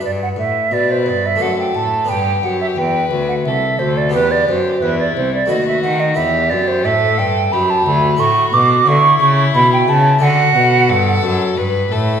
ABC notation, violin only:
X:1
M:3/4
L:1/8
Q:1/4=88
K:G
V:1 name="Violin"
z2 B2 A2 | G2 B2 A2 | G2 E2 F2 | G2 A2 G2 |
F2 E4 | F2 A2 B A |]